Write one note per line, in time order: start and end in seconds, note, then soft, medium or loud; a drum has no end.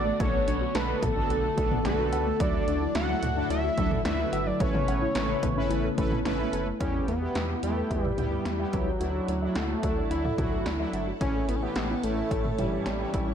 0.00 0.12 A1 loud
0.00 4.56 D3 medium
0.00 2.36 A3 medium
0.00 2.36 B3 medium
0.00 2.36 F#4 medium
0.00 0.22 D5 loud
0.06 0.18 A3 medium
0.20 0.39 B1 loud
0.20 0.32 A3 loud
0.20 0.63 B3 medium
0.20 0.63 D4 medium
0.20 0.63 F#4 medium
0.20 0.63 A4 medium
0.20 0.77 C#5 loud
0.20 kick loud
0.20 closed hi-hat medium
0.34 0.46 B3 medium
0.48 0.67 B1 loud
0.48 0.60 D4 medium
0.48 closed hi-hat medium
0.61 0.73 F#4 medium
0.75 0.94 B1 loud
0.75 1.07 B3 medium
0.75 1.07 D4 medium
0.75 1.07 F#4 medium
0.75 1.07 A4 medium
0.75 0.87 A4 loud
0.75 1.04 B4 loud
0.75 snare loud
0.75 closed hi-hat medium
0.89 1.01 A3 medium
1.02 1.22 B1 loud
1.02 1.15 B3 medium
1.02 1.85 A4 loud
1.02 kick medium
1.02 closed hi-hat medium
1.02 mid tom loud
1.16 1.48 B3 medium
1.16 1.29 D4 medium
1.16 1.48 D4 medium
1.16 1.48 F#4 medium
1.16 1.48 A4 medium
1.30 1.49 B1 loud
1.30 1.42 F#4 loud
1.30 closed hi-hat medium
1.44 1.56 A4 medium
1.57 1.77 B1 medium
1.57 1.70 A3 medium
1.57 1.79 B3 medium
1.57 1.79 D4 medium
1.57 1.79 F#4 medium
1.57 1.79 A4 medium
1.57 kick medium
1.57 closed hi-hat medium
1.71 1.84 B3 medium
1.71 mid tom medium
1.85 2.14 B1 loud
1.85 2.28 B3 medium
1.85 1.97 D4 medium
1.85 2.28 D4 medium
1.85 2.28 F#4 medium
1.85 2.42 A4 medium
1.85 2.28 B4 medium
1.85 snare loud
1.85 closed hi-hat medium
1.99 2.11 F#4 medium
2.12 2.32 C#2 loud
2.12 2.25 A4 medium
2.12 closed hi-hat medium
2.12 cowbell medium
2.26 2.39 A3 medium
2.40 2.59 D2 loud
2.40 2.52 F#3 loud
2.40 4.58 F#3 medium
2.40 4.58 A3 medium
2.40 2.83 D4 medium
2.40 6.77 E4 medium
2.40 2.83 E4 medium
2.40 2.83 F#4 medium
2.40 2.83 A4 medium
2.40 2.95 D5 loud
2.40 kick loud
2.40 closed hi-hat medium
2.54 2.66 A3 medium
2.67 2.87 D2 loud
2.67 2.80 D4 medium
2.67 closed hi-hat medium
2.81 2.94 E4 medium
2.95 3.14 D2 loud
2.95 3.27 D4 medium
2.95 3.27 E4 medium
2.95 3.07 F#4 loud
2.95 3.27 F#4 medium
2.95 3.27 A4 medium
2.95 3.47 F#5 loud
2.95 snare loud
2.95 closed hi-hat medium
3.09 3.21 F#3 medium
3.23 3.42 D2 medium
3.23 3.35 A3 medium
3.23 closed hi-hat medium
3.23 mid tom medium
3.37 3.49 D4 medium
3.37 3.69 D4 medium
3.37 3.69 E4 medium
3.37 3.69 F#4 medium
3.37 3.69 A4 medium
3.50 3.69 D2 loud
3.50 3.63 E4 loud
3.50 4.02 E5 loud
3.50 closed hi-hat medium
3.64 3.76 F#4 medium
3.78 3.97 D2 loud
3.78 3.90 F#3 medium
3.78 3.99 D4 medium
3.78 3.99 E4 medium
3.78 3.99 F#4 medium
3.78 3.99 A4 medium
3.78 kick medium
3.78 closed hi-hat medium
3.91 4.04 A3 medium
3.91 mid tom medium
4.05 4.24 D2 loud
4.05 4.18 D4 medium
4.05 4.48 D4 medium
4.05 4.48 E4 medium
4.05 4.48 F#4 medium
4.05 4.48 B4 medium
4.05 4.48 E5 loud
4.05 snare loud
4.05 closed hi-hat medium
4.19 4.31 E4 medium
4.33 4.52 G1 medium
4.33 4.45 F#4 medium
4.33 closed hi-hat medium
4.33 cowbell medium
4.47 4.59 F#3 medium
4.47 4.62 D5 medium
4.60 4.80 A1 loud
4.60 6.78 C#3 medium
4.60 6.78 A3 medium
4.60 4.73 A3 loud
4.60 6.78 B3 medium
4.60 5.03 C#4 medium
4.60 5.03 E4 medium
4.60 5.03 A4 medium
4.60 5.03 B4 medium
4.60 6.26 C#5 loud
4.60 kick loud
4.60 closed hi-hat medium
4.74 4.86 B3 medium
4.74 mid tom loud
4.88 5.07 A1 loud
4.88 5.00 C#4 medium
4.88 closed hi-hat medium
4.88 cowbell medium
5.02 5.14 E4 medium
5.15 5.35 A1 loud
5.15 5.48 C#4 medium
5.15 5.47 E4 medium
5.15 5.28 A4 medium
5.15 5.47 A4 medium
5.15 5.47 B4 medium
5.15 snare loud
5.15 closed hi-hat medium
5.29 5.41 A3 medium
5.43 5.62 A1 loud
5.43 5.55 B3 medium
5.43 kick medium
5.43 closed hi-hat medium
5.43 mid tom medium
5.57 5.69 C#4 medium
5.57 5.89 C#4 medium
5.57 5.89 E4 medium
5.57 5.89 A4 medium
5.57 5.89 B4 loud
5.70 5.90 A1 loud
5.70 5.83 E4 loud
5.70 closed hi-hat medium
5.84 5.96 A4 medium
5.98 6.17 A1 loud
5.98 6.10 A3 medium
5.98 6.19 C#4 medium
5.98 6.19 E4 medium
5.98 6.19 A4 medium
5.98 6.19 B4 loud
5.98 kick medium
5.98 closed hi-hat medium
6.12 6.24 B3 medium
6.12 mid tom medium
6.25 6.45 A1 loud
6.25 6.38 C#4 medium
6.25 6.68 C#4 medium
6.25 6.68 E4 medium
6.25 6.68 A4 medium
6.25 6.68 B4 loud
6.25 snare loud
6.25 closed hi-hat medium
6.39 6.51 E4 medium
6.53 6.72 F#1 medium
6.53 6.65 A4 medium
6.53 closed hi-hat medium
6.67 6.79 A3 medium
6.80 7.00 E2 loud
6.80 7.12 G3 medium
6.80 7.12 B3 medium
6.80 7.06 C#4 loud
6.80 6.93 E4 medium
6.80 7.12 E4 medium
6.80 13.34 E4 medium
6.80 7.12 G4 medium
6.80 8.99 G4 medium
6.80 8.99 B4 medium
6.80 8.99 G5 medium
6.80 kick loud
6.80 closed hi-hat medium
6.94 7.06 G4 medium
7.08 7.27 E2 medium
7.08 7.59 B3 loud
7.08 7.20 B4 medium
7.08 closed hi-hat medium
7.22 7.54 G3 medium
7.22 7.54 B3 medium
7.22 7.54 E4 medium
7.22 7.54 G4 medium
7.22 7.34 E5 medium
7.35 7.55 E2 loud
7.35 7.48 E6 medium
7.35 snare loud
7.35 closed hi-hat medium
7.49 7.62 E4 medium
7.63 7.82 E2 loud
7.63 8.06 G3 medium
7.63 8.03 A3 medium
7.63 8.06 B3 medium
7.63 8.06 E4 medium
7.63 7.75 G4 medium
7.63 8.06 G4 medium
7.63 closed hi-hat medium
7.77 7.89 B4 medium
7.91 8.10 E2 loud
7.91 8.03 E5 loud
7.91 kick medium
7.91 closed hi-hat medium
8.03 8.18 G3 medium
8.03 8.17 E6 medium
8.03 mid tom medium
8.18 8.37 D2 medium
8.18 8.50 G3 medium
8.18 8.75 G3 loud
8.18 8.50 B3 medium
8.18 8.30 E4 medium
8.18 8.50 E4 medium
8.18 8.50 G4 medium
8.18 closed hi-hat medium
8.18 mid tom medium
8.32 8.44 G4 medium
8.45 8.65 E2 loud
8.45 8.58 B4 medium
8.45 snare loud
8.45 closed hi-hat medium
8.59 8.91 G3 medium
8.59 8.91 B3 medium
8.59 8.91 E4 medium
8.59 8.91 G4 medium
8.59 8.72 E5 medium
8.73 8.93 C#2 medium
8.73 9.58 F#3 loud
8.73 8.85 E6 medium
8.73 kick medium
8.73 closed hi-hat medium
8.87 8.99 E4 medium
9.00 9.20 D2 loud
9.00 9.33 F#3 medium
9.00 9.33 A3 medium
9.00 9.33 D4 medium
9.00 9.33 E4 medium
9.00 9.13 F#4 medium
9.00 13.34 A4 medium
9.00 11.19 D5 medium
9.00 11.19 F#5 medium
9.00 closed hi-hat medium
9.14 9.27 A4 medium
9.28 9.48 D2 medium
9.28 9.40 D5 medium
9.28 closed hi-hat medium
9.42 9.74 F#3 medium
9.42 9.74 A3 medium
9.42 9.74 D4 medium
9.42 9.74 E4 medium
9.42 9.54 E5 medium
9.55 9.75 D2 loud
9.55 10.10 A3 loud
9.55 9.68 F#5 medium
9.55 snare loud
9.55 closed hi-hat medium
9.69 9.82 F#4 medium
9.83 10.03 D2 loud
9.83 10.26 F#3 medium
9.83 10.26 A3 medium
9.83 10.26 D4 medium
9.83 10.26 E4 medium
9.83 9.95 A4 medium
9.83 kick medium
9.83 closed hi-hat medium
9.97 10.09 D5 medium
10.11 10.30 D2 loud
10.11 10.89 E4 loud
10.11 10.23 E5 loud
10.11 closed hi-hat medium
10.25 10.37 F#5 medium
10.25 mid tom medium
10.38 10.58 C#2 medium
10.38 10.70 F#3 medium
10.38 10.70 A3 medium
10.38 10.70 D4 medium
10.38 10.70 F#4 medium
10.38 10.51 F#4 medium
10.38 kick medium
10.38 closed hi-hat medium
10.38 mid tom medium
10.52 10.64 A4 medium
10.66 10.85 D2 loud
10.66 10.78 D5 medium
10.66 snare loud
10.66 closed hi-hat medium
10.79 11.12 F#3 medium
10.79 11.11 A3 medium
10.79 11.11 D4 medium
10.79 11.12 E4 loud
10.79 10.92 E5 medium
10.93 11.12 G1 medium
10.93 11.06 F#5 medium
10.93 closed hi-hat medium
11.07 11.20 F#4 medium
11.21 11.40 A1 loud
11.21 11.53 E3 medium
11.21 11.53 A3 medium
11.21 11.50 C#4 loud
11.21 11.53 C#4 medium
11.21 11.53 E4 medium
11.21 11.33 E4 medium
11.21 13.34 C#5 medium
11.21 13.34 A5 medium
11.21 kick loud
11.21 closed hi-hat medium
11.35 11.47 A4 medium
11.48 11.68 A1 loud
11.48 11.57 B3 loud
11.48 11.61 C#5 medium
11.48 closed hi-hat medium
11.56 11.64 C#4 medium
11.62 11.94 E3 medium
11.62 11.94 A3 medium
11.62 12.05 B3 loud
11.62 11.94 C#4 medium
11.62 11.94 G4 medium
11.62 11.75 E5 medium
11.76 11.95 A1 medium
11.76 11.88 E6 medium
11.76 snare loud
11.76 closed hi-hat medium
11.90 12.02 E4 medium
12.03 12.23 A1 loud
12.03 12.46 E3 medium
12.03 12.60 A3 loud
12.03 12.46 A3 medium
12.03 12.46 C#4 medium
12.03 12.46 E4 medium
12.03 12.16 A4 medium
12.03 closed hi-hat medium
12.17 12.30 C#5 medium
12.31 12.50 A1 loud
12.31 12.43 E5 loud
12.31 kick medium
12.31 closed hi-hat medium
12.45 12.57 E6 medium
12.45 mid tom medium
12.59 12.78 G1 loud
12.59 12.91 E3 medium
12.59 13.34 G3 loud
12.59 12.91 A3 medium
12.59 12.91 C#4 medium
12.59 12.71 E4 medium
12.59 12.91 E4 medium
12.59 closed hi-hat medium
12.59 mid tom medium
12.72 12.85 A4 medium
12.86 13.05 A1 loud
12.86 12.98 C#5 medium
12.86 snare loud
12.86 closed hi-hat medium
13.00 13.32 E3 medium
13.00 13.32 A3 medium
13.00 13.32 C#4 medium
13.00 13.32 E4 medium
13.00 13.12 E5 medium
13.14 13.33 A1 medium
13.14 13.26 E6 medium
13.14 kick medium
13.14 closed hi-hat medium
13.27 13.34 E4 medium